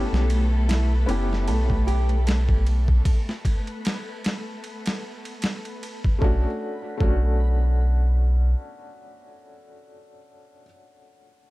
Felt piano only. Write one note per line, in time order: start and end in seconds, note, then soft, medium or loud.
0.00 1.03 B3 medium
0.00 1.04 C#4 medium
0.00 1.05 E4 medium
0.00 1.05 G4 medium
1.06 3.00 B3 loud
1.06 3.01 C#4 medium
1.06 3.02 E4 medium
1.06 3.02 G4 loud
6.19 6.44 A3 medium
6.19 6.45 C#4 medium
6.19 6.46 D4 medium
6.24 6.47 F#4 loud
6.98 10.61 A3 medium
6.98 10.63 C#4 medium
6.98 10.65 D4 medium
7.03 10.67 F#4 loud